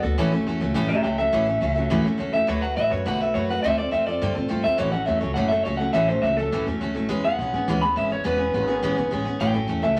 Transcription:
0.03 upright bass D2, steel-string acoustic guitar B3 F#4 A4
0.18 upright bass A1, steel-string acoustic guitar A2 E3 F#3 A3 C#4 A4
0.32 steel-string acoustic guitar F#3 A3 C#4 A4
0.47 upright bass E2, steel-string acoustic guitar F#3 A3 C#4 A4
0.60 upright bass C#2, steel-string acoustic guitar F#3 A3 C#4 A4
0.74 upright bass F#1, steel-string acoustic guitar A2 E3 F#3 A3 C#4 A4
0.88 steel-string acoustic guitar F#3 A3 C#4 A4, clean electric guitar G4 E5
1.03 upright bass C#2, steel-string acoustic guitar F#3 A3 C#4 A4, clean electric guitar E5 G5
1.18 steel-string acoustic guitar F#3 A3 C#4 A4, clean electric guitar E5
1.33 upright bass A1, steel-string acoustic guitar A2 E3 F#3 A3 C#4 A4
1.46 steel-string acoustic guitar F#3 A3 C#4 A4
1.61 upright bass C#2, steel-string acoustic guitar F#3 A3 C#4 A4
1.76 steel-string acoustic guitar F#3 A3 C#4 A4
1.90 upright bass D2, steel-string acoustic guitar A2 E3 F#3 A3 C#4 A4
2.04 upright bass E2, steel-string acoustic guitar F#3 A3 C#4 A4
2.17 upright bass D2, steel-string acoustic guitar F#3 A3 C#4 A4
2.33 upright bass E2, steel-string acoustic guitar F#3 A3 C#4 A4, clean electric guitar E5
2.47 upright bass D2, steel-string acoustic guitar D3 F#3 A3 F#4 B4, clean electric guitar C#5
2.61 steel-string acoustic guitar A3 F#4 B4, clean electric guitar F#5
2.77 upright bass A2, steel-string acoustic guitar F#3 A3 F#4 B4, clean electric guitar E5
2.91 upright bass F#2, steel-string acoustic guitar A3 F#4 B4, clean electric guitar C#5
3.06 upright bass B1, steel-string acoustic guitar D3 F#3 A3 F#4 B4, clean electric guitar F#5
3.20 steel-string acoustic guitar A3 F#4 B4, clean electric guitar E5
3.34 upright bass F#2, steel-string acoustic guitar F#3 A3 F#4 B4, clean electric guitar C#5
3.49 steel-string acoustic guitar A3 F#4 B4, clean electric guitar F#5
3.62 upright bass D2, steel-string acoustic guitar D3 A3 C4 F4 A4, clean electric guitar E5
3.77 steel-string acoustic guitar C4 F4 A4, clean electric guitar D5
3.91 upright bass F2, steel-string acoustic guitar A3 C4 F4 A4, clean electric guitar E5
4.07 steel-string acoustic guitar C4 F4 A4, clean electric guitar D5
4.21 upright bass G2, steel-string acoustic guitar D3 A3 C4 F4 A4
4.35 upright bass A2, steel-string acoustic guitar C4 F4 A4
4.48 upright bass G2, steel-string acoustic guitar A3 C4 F4 A4
4.64 upright bass D2, steel-string acoustic guitar C4 F4 A4, clean electric guitar E5
4.78 upright bass A1, steel-string acoustic guitar A2 E3 F#3 A3 C#4 A4, clean electric guitar C#5
4.91 steel-string acoustic guitar F#3 A3 C#4 A4, clean electric guitar F#5
5.06 upright bass E2, steel-string acoustic guitar F#3 A3 C#4 A4, clean electric guitar E5
5.19 upright bass C#2, steel-string acoustic guitar A3 C#4 A4, clean electric guitar C#5
5.23 steel-string acoustic guitar F#3
5.34 upright bass F#1, steel-string acoustic guitar A2 E3 F#3 A3 C#4 A4, clean electric guitar F#5
5.48 steel-string acoustic guitar A3 C#4 A4, clean electric guitar E5
5.53 steel-string acoustic guitar F#3
5.63 upright bass C#2, steel-string acoustic guitar F#3 A3 C#4, clean electric guitar C#5
5.67 steel-string acoustic guitar A4
5.77 steel-string acoustic guitar F#3 A3 C#4 A4, clean electric guitar F#5
5.93 upright bass A1, steel-string acoustic guitar A2 E3 F#3 A3 C#4 A4, clean electric guitar E5
6.08 steel-string acoustic guitar F#3 A3 C#4 A4, clean electric guitar C5
6.22 upright bass C#2, steel-string acoustic guitar F#3 A3 C#4 A4, clean electric guitar E5
6.37 steel-string acoustic guitar F#3 A3 C#4 A4, clean electric guitar A4
6.52 upright bass D2, steel-string acoustic guitar A2 E3 F#3 A3 C#4 A4
6.66 upright bass E2, steel-string acoustic guitar F#3 A3 C#4 A4
6.81 upright bass D2, steel-string acoustic guitar F#3 A3 C#4 A4
6.94 upright bass A1, steel-string acoustic guitar F#3 A3 C#4 A4
7.09 upright bass E1, steel-string acoustic guitar E3 G#3 B3 C#4 G#4
7.24 steel-string acoustic guitar B3 C#4 G#4, clean electric guitar F#5
7.39 upright bass B1, steel-string acoustic guitar G#3 B3 C#4 G#4
7.53 upright bass G#1, steel-string acoustic guitar B3 C#4 G#4
7.68 upright bass D2, steel-string acoustic guitar E3 G#3 B3 C#4 G#4
7.81 steel-string acoustic guitar B3 C#4 G#4, clean electric guitar B5
7.96 upright bass G#1, steel-string acoustic guitar G#3 B3 C#4 G#4, clean electric guitar E5
8.10 steel-string acoustic guitar B3 C#4 G#4, clean electric guitar C#5
8.24 upright bass E1, steel-string acoustic guitar E3 G#3 B3 C#4 G#4, clean electric guitar B4
8.38 steel-string acoustic guitar B3 C#4 G#4
8.53 upright bass G#1, steel-string acoustic guitar G#3 B3 C#4 G#4
8.68 steel-string acoustic guitar B3 C#4 G#4
8.82 upright bass A1, steel-string acoustic guitar E3 G#3 B3 C#4 G#4
8.96 upright bass B1, steel-string acoustic guitar B3 C#4 G#4
9.11 upright bass A1, steel-string acoustic guitar G#3 B3 C#4 G#4
9.25 upright bass G#1, steel-string acoustic guitar B3 C#4 G#4
9.40 upright bass A1, steel-string acoustic guitar A2 E3 F#3 A3 C#4 A4, clean electric guitar G5
9.54 steel-string acoustic guitar F#3 A3 C#4 A4
9.67 upright bass E2, steel-string acoustic guitar F#3 A3 C#4 A4
9.82 upright bass C#2, steel-string acoustic guitar F#3 A3 C#4 A4, clean electric guitar E5
9.97 steel-string acoustic guitar A2

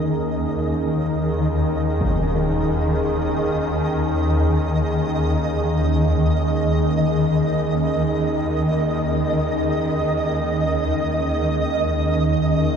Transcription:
Already playing: synth drone D#2 D#3, ambient pad C#4 D#4 G#4 A#4, synth texture D#5
2.01 impact

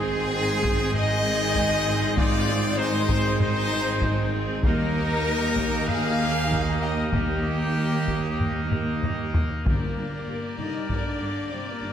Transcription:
Already playing: double bass section G#1, tuba G#1, cello section G#2, trombone section D#3 G#3, violin section C4 G#4, pipe organ C4 D#4 G#4 C5, french horn section C4 D#4, flute G#4, trumpet section G#4
0.02 viola section C4 G#4
0.33 viola section G#3 D#4
0.63 viola section C4 G#4, taiko
0.93 viola section G#3 D#4, violin section G#4 D#5, flute D#5, trumpet section D#5, taiko low-mid
1.26 viola section C4 G#4
1.56 viola section G#3 D#4, taiko
1.87 viola section C4 G#4
2.17 viola section G#3 D#4, violin section F4 D5, flute D5, trumpet section D5, taiko
2.49 viola section C4 G#4
2.78 viola section G#3 D#4, violin section D#4 C5, flute C5, trumpet section C5
3.09 viola section C4 G#4, taiko
3.39 viola section G#3 D#4, violin section D#4 C5, flute C5, trumpet section C5, taiko low-mid
3.72 viola section C4 G#4
4.02 viola section G#3 D#4, taiko
4.34 viola section C4 G#4
4.63 tuba D#2, cello section D#2, double bass section D#2, trombone section D#3 A#3, viola section G3 D#4, french horn section A#3 D#4, pipe organ A#3 D#4 A#4 D#5, violin section D#4 A#4, flute A#4, trumpet section A#4, taiko
4.97 viola section A#3 G4
5.27 viola section G3 D#4
5.57 viola section A#3 G4, taiko
5.88 viola section A#3 D#4, violin section G#4 F5, trumpet section F5, flute F5, taiko low-mid
6.20 viola section A#3 G5
6.51 viola section A#3 D#4, taiko
6.82 viola section A#3 G4, violin section G4 D#5, trumpet section D#5, flute D#5
7.12 violin section A#3 G4, viola section D#4, trumpet section G4, flute G4, taiko
7.16 viola section G3
7.47 viola section A#3 G4
7.78 viola section G3 D#4
8.08 viola section A#3 G4, taiko
8.40 viola section G3 D#4, taiko low-mid
8.72 viola section A#3 G4, taiko low-mid
9.03 viola section G3 D#4, taiko low-mid
9.34 viola section A#3 G4, taiko low
9.65 double bass section G1, tuba G1, timpani G2, cello section G2, trombone section A#2, french horn section A#3, pipe organ A#3 G4 A#4, violin section A#4 D5, viola section A#4 D5, taiko
9.97 tuba G1, double bass section G1, cello section G2, viola section D4
10.27 tuba G1, double bass section G1, cello section G2, viola section G4
10.58 tuba G1, double bass section G1, cello section G2, viola section D3, trombone section G3, french horn section D#4, violin section D#5, taiko mid
10.88 tuba G1, double bass section G1, cello section G2, trombone section D3, french horn section D4, viola section A#4, violin section D5, taiko
11.21 double bass section G1, tuba G1, cello section G2, viola section D4
11.51 double bass section G1, tuba G1, cello section G2, trombone section C3, french horn section C4, viola section G4, violin section C5
11.70 trombone section A#2, french horn section A#3, violin section A#4
11.81 double bass section G1, tuba G1, cello section G2, viola section D4

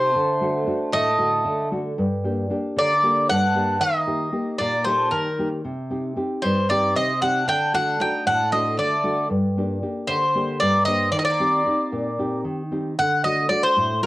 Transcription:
Already playing: nylon-string guitar C3 G4, bouzouki A3 C5
0.15 nylon-string guitar D3
0.41 nylon-string guitar A3 D4 F#4
0.66 nylon-string guitar A3 D4 F#4
0.92 nylon-string guitar A2, bouzouki A3 D#5
1.18 nylon-string guitar D3 A3 F#4
1.45 nylon-string guitar D3
1.71 nylon-string guitar A3 D4 F#4
1.98 nylon-string guitar G2
2.24 nylon-string guitar A#3 D4 G4
2.50 nylon-string guitar A#3 D4 G4
2.76 nylon-string guitar D3, bouzouki A#3 D5
3.03 nylon-string guitar A#3 D4 G4
3.29 nylon-string guitar G2, bouzouki D4 F#5
3.54 nylon-string guitar A#3 D4 G4
3.80 nylon-string guitar D#3, bouzouki A#3 D#5
4.07 nylon-string guitar A#3 D#4 G4
4.32 nylon-string guitar A#3 D#4 G4
4.58 nylon-string guitar A#2, bouzouki A#3 D5
4.84 bouzouki A3 C5, nylon-string guitar A#3 D#4 G4
5.11 nylon-string guitar D#3, bouzouki G3 A#4
5.38 nylon-string guitar A#3 D#4 G4
5.64 nylon-string guitar C3
5.90 nylon-string guitar C4 D#4 G4
6.16 nylon-string guitar C4 D#4 G4
6.42 nylon-string guitar G2, bouzouki G3 C5
6.69 bouzouki A#3 D5, nylon-string guitar C4 D#4 G4
6.96 nylon-string guitar C3, bouzouki C4 D#5
7.21 nylon-string guitar C4 D#4 G4, bouzouki D4 F#5
7.47 nylon-string guitar D3, bouzouki D4 G5
7.73 nylon-string guitar A3 D4 F#4, bouzouki D4 F#5
8.00 nylon-string guitar A3 D4 F#4, bouzouki D#4 G5
8.26 nylon-string guitar A2, bouzouki D4 F#5
8.52 nylon-string guitar A3 D4 F#4, bouzouki C4 D#5
8.77 nylon-string guitar D3, bouzouki A3 D5
9.03 nylon-string guitar A3 D4 F#4
9.30 nylon-string guitar G2
9.57 nylon-string guitar A#3 D4 G4
9.82 nylon-string guitar A#3 D4 G4
10.07 nylon-string guitar D3, bouzouki G3 C5
10.35 nylon-string guitar A#3 D4 G4
10.60 nylon-string guitar G2, bouzouki A#3 D5
10.85 nylon-string guitar A#3 D4 G4, bouzouki C4 D#5
11.12 nylon-string guitar D#3, bouzouki A#3 D5
11.19 bouzouki C4 D#5
11.25 bouzouki D5
11.30 bouzouki A#3
11.39 nylon-string guitar C4 D#4 G4
11.66 nylon-string guitar C4 D#4 G4
11.92 nylon-string guitar A#2
12.18 nylon-string guitar C4 D#4 G4
12.44 nylon-string guitar D#3
12.71 nylon-string guitar C4 D#4 G4
12.99 nylon-string guitar D3, bouzouki F#5
13.24 nylon-string guitar A3 D4 F#4, bouzouki D#5
13.49 nylon-string guitar A3 D4 F#4, bouzouki D5
13.63 bouzouki C5
13.76 nylon-string guitar A2
14.02 nylon-string guitar A3 D4 F#4, bouzouki A#4

